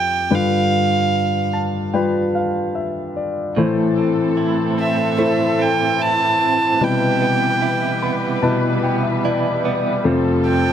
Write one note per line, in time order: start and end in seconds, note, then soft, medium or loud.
0.00 0.27 F2 soft
0.00 0.27 C3 soft
0.00 0.23 A3 soft
0.00 0.23 F4 soft
0.00 0.24 G4 soft
0.00 0.36 G5 medium
0.30 3.52 G2 soft
0.30 3.52 D3 soft
0.30 1.85 G3 soft
0.30 1.85 F4 soft
0.30 1.86 B4 medium
0.35 1.55 F5 medium
1.53 1.91 A5 soft
1.93 3.48 G3 soft
1.93 3.48 F4 soft
1.93 3.48 B4 medium
1.93 2.31 G5 soft
2.35 2.72 F5 soft
2.75 3.13 E5 soft
3.16 3.54 D5 soft
3.56 6.80 A2 medium
3.56 6.77 A2 soft
3.56 10.01 E3 soft
3.56 6.77 E3 soft
3.56 5.10 A3 medium
3.56 6.77 C4 soft
3.56 5.11 E4 soft
3.56 6.77 A4 medium
3.56 5.11 C5 medium
3.98 4.77 C4 soft
4.37 5.99 E4 soft
4.78 5.59 C4 soft
4.78 5.17 E5 medium
5.18 6.72 A3 soft
5.18 6.89 A3 soft
5.18 6.72 E4 soft
5.18 6.72 C5 soft
5.18 5.63 E5 medium
5.59 6.40 C4 soft
5.59 6.03 G5 medium
6.00 7.62 E4 soft
6.00 6.85 A5 medium
6.40 7.21 C4 soft
6.81 8.35 B2 soft
6.81 10.05 C3 medium
6.81 10.01 C3 soft
6.81 10.73 G3 soft
6.81 10.01 G3 soft
6.81 8.35 E4 soft
6.81 10.02 B4 medium
6.81 8.35 B4 medium
6.81 8.44 G5 medium
7.22 8.01 B3 soft
7.62 9.24 E4 soft
8.02 8.83 B3 soft
8.02 8.40 B5 soft
8.42 9.96 B2 medium
8.42 10.13 G3 soft
8.42 9.97 E4 soft
8.42 9.97 B4 medium
8.42 8.80 A5 soft
8.83 9.64 B3 soft
8.83 9.02 G5 soft
9.03 9.22 E5 soft
9.24 10.13 E4 soft
9.24 9.62 D5 soft
9.65 10.13 B3 soft
9.65 10.02 D5 soft
10.04 10.73 F2 medium
10.04 10.73 C3 medium
10.04 10.73 F3 medium
10.04 10.73 A3 medium
10.04 10.73 F4 medium
10.04 10.73 A4 medium
10.04 10.73 C5 medium
10.47 10.73 C4 soft
10.47 10.73 G5 medium